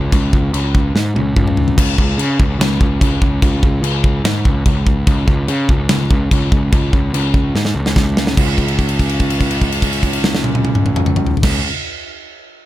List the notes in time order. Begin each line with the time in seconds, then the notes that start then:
Already playing: C#2
0.12 C#2, kick, china
0.33 C#2, kick
0.53 C#2, china
0.75 kick
0.95 G#2, snare
1.15 C#2, high tom
1.36 C#2, kick, mid tom
1.47 mid tom
1.57 floor tom
1.68 floor tom
1.78 C#2, kick, china, crash
1.98 C#2, kick
2.18 C#3, china
2.40 C#2, kick
2.59 C#2, snare, china
2.81 C#2, kick
3.01 C#2, kick, china
3.21 C#2, kick
3.42 C#2, kick, china
3.63 C#2, kick
3.82 C#2, china
4.04 kick
4.24 G#2, snare, china
4.45 C#2, kick
4.66 C#2, kick, china
4.87 kick
5.07 C#2, kick, china
5.28 C#2, kick
5.48 C#3, china
5.69 C#2, kick
5.89 C#2, snare, china
6.11 C#2, kick
6.31 C#2, kick, china
6.52 C#2, kick
6.72 C#2, kick, china
6.93 C#2, kick
7.14 C#2, china
7.34 kick
7.55 G#2, snare
7.65 snare
7.75 C#2
7.86 snare
7.96 C#2, kick, snare
8.17 snare
8.27 snare
8.37 C#2, kick, crash
8.58 kick, crash
8.68 crash
8.79 kick, crash
8.89 crash
8.99 kick, crash
9.09 crash
9.19 kick, crash
9.30 crash
9.40 kick, crash
9.51 crash
9.61 kick, crash
9.72 crash
9.82 kick, crash
9.93 crash
10.03 kick, crash
10.13 crash
10.24 snare
10.35 snare
10.44 high tom
10.55 high tom
10.65 high tom
10.75 mid tom
10.86 mid tom
10.96 mid tom
11.06 mid tom
11.16 mid tom
11.27 floor tom
11.37 floor tom
11.43 C#2, kick, snare, crash